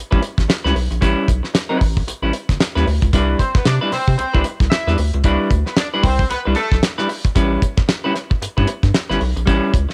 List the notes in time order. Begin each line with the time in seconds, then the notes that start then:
0.11 A1 G3 C#4 E4 B4, kick
0.22 muted clean electric guitar stroke, closed hi-hat
0.38 A1, muted clean electric guitar stroke, kick, snare, closed hi-hat
0.48 muted clean electric guitar stroke, snare, closed hi-hat
0.64 C#2 G3 C#4 E4 B4, snare
0.74 B1, muted clean electric guitar stroke, open hi-hat
0.91 A#1, muted clean electric guitar stroke, closed hi-hat
1.01 A1 G3 C#4 E4 B4, kick, closed hi-hat
1.28 B1, kick, closed hi-hat
1.43 muted clean electric guitar stroke, snare
1.54 muted clean electric guitar stroke, snare, closed hi-hat
1.69 G3 C#4 E4 B4
1.80 A1, muted clean electric guitar stroke, kick, open hi-hat
1.97 muted clean electric guitar stroke, kick
2.07 A1, muted clean electric guitar stroke, closed hi-hat
2.22 A1 G3 C#4 E4 B4
2.33 muted clean electric guitar stroke, closed hi-hat
2.49 G1, muted clean electric guitar stroke, kick, snare, closed hi-hat
2.60 muted clean electric guitar stroke, snare, closed hi-hat
2.75 D#2 G3 C#4 E4 B4, snare
2.87 D2, muted clean electric guitar stroke, open hi-hat
3.02 C#2, muted clean electric guitar stroke, kick, closed hi-hat
3.13 C2 G3 D4 E4 B4, kick, closed hi-hat
3.39 C4 C5, kick, closed hi-hat
3.55 C3 B3 B4, muted clean electric guitar stroke, kick, snare
3.65 C3 D4 D5, muted clean electric guitar stroke, snare, closed hi-hat
3.81 G3 D4 E4 B4
3.92 C3 C4 C5, muted clean electric guitar stroke, snare, open hi-hat
4.08 C3, muted clean electric guitar stroke, kick
4.18 C2 C4 C5, muted clean electric guitar stroke, closed hi-hat
4.34 C2 G3 D4 E4 B4, kick
4.44 muted clean electric guitar stroke, closed hi-hat
4.60 C2, muted clean electric guitar stroke, kick, snare, closed hi-hat
4.70 E4 E5, muted clean electric guitar stroke, snare, closed hi-hat
4.87 E2 G3 D4 E4 B4, snare
4.98 D2, muted clean electric guitar stroke, open hi-hat
5.13 C#2, muted clean electric guitar stroke, closed hi-hat
5.24 C2 G3 D4 E4 B4, kick, closed hi-hat
5.51 D2, kick, closed hi-hat
5.66 B3 B4, muted clean electric guitar stroke, snare
5.76 D4 D5, muted clean electric guitar stroke, snare, closed hi-hat
5.94 G3 D4 E4 B4
6.03 C2 C4 C5, muted clean electric guitar stroke, kick, open hi-hat
6.19 muted clean electric guitar stroke, kick
6.30 C2 B3 B4, muted clean electric guitar stroke, closed hi-hat
6.45 C2 G3 D4 E4 B4
6.55 A3 A4, muted clean electric guitar stroke, closed hi-hat
6.71 B1, muted clean electric guitar stroke, kick, snare
6.83 muted clean electric guitar stroke, snare, closed hi-hat
6.98 G3 D4 E4 B4, snare
7.09 muted clean electric guitar stroke, open hi-hat
7.25 muted clean electric guitar stroke, kick, closed hi-hat
7.35 A1 G3 C#4 E4 B4, kick, closed hi-hat
7.62 kick, closed hi-hat
7.77 G2, muted clean electric guitar stroke, kick, snare
7.88 muted clean electric guitar stroke, snare, closed hi-hat
8.04 G3 C#4 E4 B4
8.14 muted clean electric guitar stroke, snare, closed hi-hat
8.30 muted clean electric guitar stroke, kick
8.42 G2, muted clean electric guitar stroke, closed hi-hat
8.57 G2 G3 C#4 E4 B4, kick
8.67 muted clean electric guitar stroke, closed hi-hat
8.83 G2, muted clean electric guitar stroke, kick, snare, closed hi-hat
8.94 muted clean electric guitar stroke, snare, closed hi-hat
9.10 G1 G3 C#4 E4 B4, snare
9.20 B1, muted clean electric guitar stroke, open hi-hat
9.36 A#1, muted clean electric guitar stroke, closed hi-hat
9.46 A1 G3 C#4 E4 B4, kick, closed hi-hat
9.74 C#2, kick, closed hi-hat
9.89 muted clean electric guitar stroke, snare